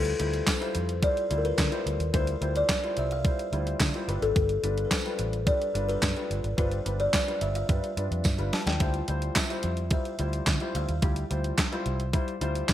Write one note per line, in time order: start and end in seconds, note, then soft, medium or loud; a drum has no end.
0.00 0.12 D2 loud
0.00 0.11 G3 medium
0.00 0.11 E4 medium
0.00 0.11 F4 medium
0.00 0.44 A4 medium
0.00 0.11 C5 medium
0.05 closed hi-hat soft
0.19 0.40 D2 medium
0.19 0.49 G3 medium
0.19 0.49 E4 medium
0.19 0.49 F4 medium
0.19 0.49 C5 medium
0.19 closed hi-hat medium
0.34 closed hi-hat soft
0.47 1.05 C5 medium
0.47 kick medium
0.47 snare loud
0.47 clap medium
0.47 closed hi-hat medium
0.47 tambourine medium
0.61 0.90 G3 medium
0.61 0.91 E4 medium
0.61 0.91 F4 medium
0.61 0.91 C5 medium
0.61 closed hi-hat soft
0.75 1.06 F2 medium
0.75 closed hi-hat medium
0.89 closed hi-hat medium
1.02 1.22 G3 medium
1.02 1.22 E4 medium
1.02 1.22 F4 medium
1.02 1.22 C5 medium
1.02 1.39 D5 loud
1.02 kick loud
1.02 closed hi-hat medium
1.17 closed hi-hat soft
1.30 1.51 D2 medium
1.30 1.60 G3 medium
1.30 1.60 E4 medium
1.30 1.60 F4 medium
1.30 1.60 C5 medium
1.30 closed hi-hat medium
1.38 1.45 A#4 medium
1.45 2.16 B4 medium
1.45 closed hi-hat medium
1.58 1.69 D3 medium
1.58 kick loud
1.58 snare loud
1.58 clap medium
1.58 closed hi-hat medium
1.58 tambourine medium
1.71 2.01 G3 medium
1.71 2.01 E4 medium
1.71 2.01 F4 medium
1.71 2.02 C5 medium
1.71 closed hi-hat soft
1.86 1.96 D2 medium
1.86 closed hi-hat medium
2.00 2.10 D#2 medium
2.00 closed hi-hat soft
2.13 2.34 D2 loud
2.13 2.33 G3 medium
2.13 2.33 E4 medium
2.13 2.33 F4 medium
2.13 2.34 C5 medium
2.13 2.57 C5 medium
2.13 kick loud
2.13 closed hi-hat loud
2.27 closed hi-hat medium
2.41 2.62 D2 medium
2.41 2.71 G3 medium
2.41 2.71 E4 medium
2.41 2.71 F4 medium
2.41 2.71 C5 medium
2.41 closed hi-hat medium
2.56 2.95 D5 loud
2.56 closed hi-hat soft
2.69 kick loud
2.69 snare loud
2.69 clap medium
2.69 closed hi-hat medium
2.69 tambourine medium
2.83 3.13 G3 medium
2.83 3.13 E4 medium
2.83 3.13 F4 medium
2.83 3.13 C5 medium
2.83 closed hi-hat soft
2.97 3.28 C2 medium
2.97 3.05 E5 loud
2.97 closed hi-hat medium
3.11 3.63 F5 loud
3.11 closed hi-hat medium
3.24 3.44 G3 medium
3.24 3.45 E4 medium
3.24 3.45 F4 medium
3.24 3.45 C5 medium
3.24 kick loud
3.24 closed hi-hat medium
3.39 closed hi-hat soft
3.52 3.73 D2 medium
3.52 3.82 G3 medium
3.52 3.82 E4 medium
3.52 3.82 F4 medium
3.52 3.83 C5 medium
3.52 closed hi-hat medium
3.67 closed hi-hat soft
3.80 3.91 D3 medium
3.80 kick loud
3.80 snare loud
3.80 clap medium
3.80 closed hi-hat medium
3.80 tambourine medium
3.94 4.06 G3 medium
3.94 4.08 E4 medium
3.94 4.07 F4 medium
3.94 4.09 C5 medium
3.94 closed hi-hat soft
4.08 4.18 G1 medium
4.08 4.52 G3 medium
4.08 4.53 D4 medium
4.08 4.53 F4 medium
4.08 4.23 B4 medium
4.08 4.53 B4 medium
4.08 closed hi-hat medium
4.22 4.32 G#1 medium
4.22 4.87 A4 medium
4.22 closed hi-hat soft
4.36 4.57 G1 loud
4.36 kick loud
4.36 closed hi-hat medium
4.49 closed hi-hat medium
4.63 4.84 G1 loud
4.63 4.93 G3 medium
4.63 4.93 D4 medium
4.63 4.93 F4 medium
4.63 4.93 B4 medium
4.63 closed hi-hat medium
4.78 closed hi-hat soft
4.85 4.92 B4 medium
4.91 5.49 C5 medium
4.91 kick medium
4.91 snare loud
4.91 clap medium
4.91 closed hi-hat medium
4.91 tambourine medium
5.05 5.35 G3 medium
5.05 5.35 D4 medium
5.05 5.35 F4 medium
5.05 5.35 B4 medium
5.05 closed hi-hat soft
5.19 5.50 A1 medium
5.19 closed hi-hat medium
5.33 closed hi-hat soft
5.46 5.66 G3 medium
5.46 5.67 D4 medium
5.46 5.67 F4 medium
5.46 5.67 B4 medium
5.46 5.86 D5 loud
5.46 kick loud
5.46 closed hi-hat medium
5.62 closed hi-hat soft
5.74 5.95 G1 medium
5.74 6.04 G3 medium
5.74 6.04 D4 medium
5.74 6.04 F4 medium
5.74 6.04 B4 medium
5.74 closed hi-hat medium
5.89 6.60 B4 loud
5.89 closed hi-hat medium
6.02 6.13 G2 loud
6.02 kick loud
6.02 snare loud
6.02 clap medium
6.02 closed hi-hat medium
6.02 tambourine medium
6.16 6.46 G3 medium
6.16 6.46 D4 medium
6.16 6.46 F4 medium
6.16 6.46 B4 medium
6.16 closed hi-hat soft
6.30 6.41 G1 medium
6.30 closed hi-hat medium
6.44 6.54 G#1 medium
6.44 closed hi-hat medium
6.57 6.79 G1 medium
6.57 6.77 G3 medium
6.57 6.78 D4 medium
6.57 6.78 F4 medium
6.57 6.78 B4 medium
6.57 7.01 C5 loud
6.57 kick loud
6.57 closed hi-hat medium
6.71 closed hi-hat medium
6.85 7.06 G1 loud
6.85 7.15 G3 medium
6.85 7.15 D4 medium
6.85 7.15 F4 medium
6.85 7.16 B4 medium
6.85 closed hi-hat medium
7.00 7.43 D5 loud
7.00 closed hi-hat soft
7.13 kick medium
7.13 snare loud
7.13 clap medium
7.13 closed hi-hat medium
7.13 tambourine medium
7.27 7.57 G3 medium
7.27 7.57 D4 medium
7.27 7.57 F4 medium
7.27 7.57 B4 medium
7.27 closed hi-hat soft
7.41 7.62 G1 medium
7.41 7.48 E5 medium
7.41 closed hi-hat medium
7.55 8.07 F5 medium
7.55 closed hi-hat medium
7.69 7.79 G2 loud
7.69 7.89 G3 medium
7.69 7.89 D4 medium
7.69 7.89 F4 medium
7.69 7.89 B4 medium
7.69 kick loud
7.69 closed hi-hat medium
7.84 closed hi-hat soft
7.96 8.07 G2 medium
7.96 8.26 G3 medium
7.96 8.27 D4 medium
7.96 8.27 F4 medium
7.96 8.27 B4 medium
7.96 closed hi-hat medium
8.11 8.21 F2 medium
8.11 closed hi-hat soft
8.24 8.35 G2 medium
8.24 kick loud
8.24 snare medium
8.24 closed hi-hat medium
8.24 tambourine medium
8.38 8.49 G1 medium
8.38 8.68 G3 medium
8.38 8.68 D4 medium
8.38 8.68 F4 medium
8.38 8.68 B4 medium
8.38 closed hi-hat soft
8.53 8.67 A5 medium
8.53 snare medium
8.53 open hi-hat medium
8.66 8.77 D#2 medium
8.66 9.38 G5 loud
8.66 snare medium
8.66 closed hi-hat soft
8.80 9.01 D2 medium
8.80 9.00 G3 medium
8.80 9.00 E4 medium
8.80 9.00 F4 medium
8.80 9.00 C5 medium
8.80 kick loud
8.80 closed hi-hat medium
8.94 closed hi-hat medium
9.08 9.29 D2 medium
9.08 9.38 G3 medium
9.08 9.38 E4 medium
9.08 9.38 F4 medium
9.08 9.38 C5 medium
9.08 closed hi-hat medium
9.22 closed hi-hat soft
9.35 9.92 E5 medium
9.35 kick medium
9.35 snare loud
9.35 clap medium
9.35 closed hi-hat medium
9.35 tambourine medium
9.49 9.79 G3 medium
9.49 9.79 E4 medium
9.49 9.80 F4 medium
9.49 9.80 C5 medium
9.49 closed hi-hat soft
9.63 9.95 F2 medium
9.63 closed hi-hat medium
9.77 closed hi-hat soft
9.91 10.11 G3 medium
9.91 10.11 E4 medium
9.91 10.11 F4 medium
9.91 10.11 C5 medium
9.91 10.44 E5 medium
9.91 kick loud
9.91 closed hi-hat medium
10.05 closed hi-hat soft
10.19 10.40 D2 medium
10.19 10.49 G3 medium
10.19 10.49 E4 medium
10.19 10.49 F4 medium
10.19 10.49 C5 medium
10.19 closed hi-hat medium
10.33 closed hi-hat soft
10.46 10.57 D3 loud
10.46 kick loud
10.46 snare medium
10.46 clap medium
10.46 closed hi-hat medium
10.46 tambourine medium
10.60 10.90 G3 medium
10.60 10.90 E4 medium
10.60 10.91 F4 medium
10.60 10.91 C5 medium
10.60 closed hi-hat soft
10.75 10.85 D2 medium
10.75 11.55 F5 loud
10.75 closed hi-hat medium
10.89 10.99 D#2 medium
10.89 closed hi-hat soft
11.02 11.23 D2 medium
11.02 11.22 G3 medium
11.02 11.22 E4 medium
11.02 11.22 F4 medium
11.02 11.22 G4 medium
11.02 kick loud
11.02 closed hi-hat medium
11.16 closed hi-hat medium
11.30 11.51 D2 loud
11.30 11.60 G3 medium
11.30 11.60 E4 medium
11.30 11.60 F4 medium
11.30 11.60 C5 medium
11.30 closed hi-hat medium
11.44 closed hi-hat soft
11.57 kick medium
11.57 snare loud
11.57 clap medium
11.57 closed hi-hat medium
11.57 tambourine medium
11.72 12.02 G3 medium
11.72 12.02 E4 medium
11.72 12.02 F4 medium
11.72 12.02 C5 loud
11.72 closed hi-hat soft
11.86 12.17 C2 medium
11.86 closed hi-hat medium
12.00 closed hi-hat soft
12.13 12.33 G3 medium
12.13 12.33 E4 medium
12.13 12.33 F4 medium
12.13 12.34 C5 medium
12.13 kick loud
12.13 closed hi-hat medium
12.28 closed hi-hat soft
12.41 12.62 D2 medium
12.41 12.71 G3 medium
12.41 12.71 E4 medium
12.41 12.71 F4 medium
12.41 12.71 C5 medium
12.41 closed hi-hat medium
12.55 closed hi-hat soft
12.68 12.73 D3 medium
12.68 kick loud
12.68 snare loud
12.68 clap medium
12.68 closed hi-hat medium
12.68 tambourine medium